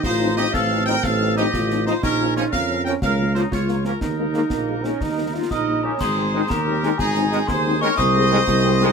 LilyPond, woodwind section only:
\new Staff \with { instrumentName = "Woodwind section" } { \time 6/8 \key aes \major \tempo 4. = 121 ees'4 g'8 a'4 bes'8 | a'4 g'4. ees'8 | des'4 f'8 bes'4 bes'8 | bes'4 ees'8 f'4 des'8 |
ees'2.~ | ees'4. bes'4 g'8 | aes'4. g'4. | ees'4. aes'4 bes'8 |
c''2. | }